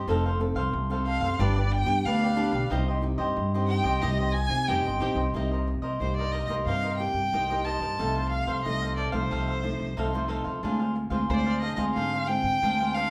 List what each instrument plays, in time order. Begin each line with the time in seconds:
0.07 upright bass F1, nylon-string guitar F3 C4 D#4 A4, cavaquinho D#4 A4 C5 F5
0.26 cavaquinho A4 C5 F5
0.40 nylon-string guitar C4 D#4 A4, muted cavaquinho stroke
0.55 upright bass C2, cavaquinho A4 C5 F5
0.73 upright bass C2, nylon-string guitar C3
0.90 nylon-string guitar C4 D#4 A4, cavaquinho A4 C5 F5
1.05 cavaquinho D#4 A4 C5 F5, violin F5
1.21 upright bass F#1, cavaquinho A4 C5 F5
1.39 upright bass G1, nylon-string guitar G3 B3 D4 G4, cavaquinho D4 G4 B4 D5, violin D5
1.56 cavaquinho G4 B4 D5
1.71 violin G5, muted cavaquinho stroke
1.86 upright bass G2, nylon-string guitar B3 D4 G4
2.05 upright bass D2, nylon-string guitar D3, cavaquinho D4 G4 B4 D5, violin F5
2.22 cavaquinho G4 B4 D5
2.36 nylon-string guitar B3 D4 G4, cavaquinho D4 G4 B4 D5
2.52 upright bass B1, cavaquinho G4 B4 D5
2.70 upright bass C2, nylon-string guitar C3 C4 D#4 G4, cavaquinho D#4 G4 C5 D#5
2.88 cavaquinho G4 C5 D#5
3.01 nylon-string guitar C4 D#4 G4, muted cavaquinho stroke
3.18 upright bass G2, cavaquinho G4 C5 D#5
3.36 upright bass G2, nylon-string guitar G2
3.54 nylon-string guitar C4 D#4 G4, cavaquinho G4 C5 D#5
3.67 cavaquinho D#4 G4 C5 D#5, violin G5
3.84 upright bass C2, cavaquinho G4 C5 D#5
4.01 upright bass C2, nylon-string guitar C3 C4 D#4 G4, cavaquinho D#4 G4 C5 D#5, violin D#5
4.19 cavaquinho G4 C5 D#5
4.32 violin G#5, muted cavaquinho stroke
4.49 upright bass C3, nylon-string guitar C4 D#4 G4
4.67 upright bass F1, nylon-string guitar G2, cavaquinho D#4 G4 C5 D#5, violin G5
4.86 upright bass G1, cavaquinho G4 C5 D#5
5.00 upright bass A#1, nylon-string guitar C4 D#4 G4, cavaquinho D#4 G4 C5 D#5
5.15 upright bass C2, cavaquinho G4 C5 D#5
5.34 upright bass C2, nylon-string guitar C3 A#3 D#4 G4, cavaquinho D#4 A#4 C5 D#5
5.51 cavaquinho A#4 C5 D#5
5.67 muted cavaquinho stroke
5.82 upright bass C2, cavaquinho A#4 C5 D#5
6.00 upright bass C2, nylon-string guitar G2 A#3 D#4 G4, violin C5
6.17 cavaquinho A#4 C5 D#5, violin D5
6.32 cavaquinho D#4 A#4 C5 D#5, violin D#5
6.46 upright bass C2, nylon-string guitar A#3 D#4 G4, cavaquinho C5 D#5, violin D#5
6.50 cavaquinho A#4
6.66 upright bass G2, nylon-string guitar C3, cavaquinho D#4 A#4 C5 D#5, violin F5
6.84 cavaquinho A#4 C5 D#5
6.98 nylon-string guitar A#3 D#4 G4, violin G5, muted cavaquinho stroke
7.14 upright bass G2
7.33 upright bass C2, nylon-string guitar G2 A#3 D#4 G4, cavaquinho D#4 A#4 C5 D#5
7.50 nylon-string guitar A#3 D#4 G4, cavaquinho A#4 C5 D#5
7.64 cavaquinho D#4 A#4 C5 D#5, violin A5
7.80 upright bass G2, cavaquinho A#4 C5 D#5
7.99 upright bass C2, nylon-string guitar C3 F3 A3 D#4, cavaquinho D#4 A4 C5 F5
8.16 cavaquinho A4 C5 F5
8.30 violin F5, muted cavaquinho stroke
8.46 upright bass C2, cavaquinho A4 C5 F5
8.65 upright bass C2, nylon-string guitar C3 F3 A3 D#4, violin D#5
8.82 cavaquinho A4 C5 F5
8.96 cavaquinho D#4 A4 C5 F5, violin D5
9.12 upright bass C2, nylon-string guitar F3 A3 D#4, cavaquinho A4 C5 F5, violin C5
9.31 upright bass C2, nylon-string guitar C3, cavaquinho D#4 A4 C5 F5
9.48 cavaquinho A4 C5 F5
9.62 nylon-string guitar F3 A3 D#4, muted cavaquinho stroke
9.79 upright bass C2
9.97 upright bass C2, nylon-string guitar C3 F3 A3 D#4, cavaquinho D#4 A4 C5 F5
10.13 nylon-string guitar F3 A3 D#4, cavaquinho A4 C5 F5
10.28 cavaquinho D#4 A4 C5 F5
10.44 upright bass C#2, cavaquinho A4 C5 F5
10.63 upright bass D2, nylon-string guitar D3 G#3 C4 F4, cavaquinho D4 G#4 C5 F5
10.79 cavaquinho G#4 C5 F5
10.95 muted cavaquinho stroke
11.10 upright bass D2, nylon-string guitar G#3 C4 F4, cavaquinho G#4 C5 F5
11.30 upright bass D2, nylon-string guitar D3 G#3 C4 F4, violin C5 D5
11.37 violin C5
11.46 cavaquinho G#4 C5 F5, violin D5
11.61 cavaquinho D4 G#4 C5 F5, violin D#5
11.76 upright bass D2, nylon-string guitar G#3 C4 F4, cavaquinho G#4 C5 F5, violin D#5
11.94 upright bass G#2, nylon-string guitar D3, cavaquinho D4 G#4 C5 F5, violin F5
12.14 cavaquinho G#4 C5 F5
12.27 nylon-string guitar G#3 C4 F4, violin G5, muted cavaquinho stroke
12.43 upright bass G#2
12.62 upright bass D2, nylon-string guitar D3 G#3 C4 F4, cavaquinho D4 G#4 C5 F5
12.80 nylon-string guitar G#3 C4 F4, cavaquinho G#4 C5 F5
12.94 cavaquinho D4 G#4 C5 F5, violin F5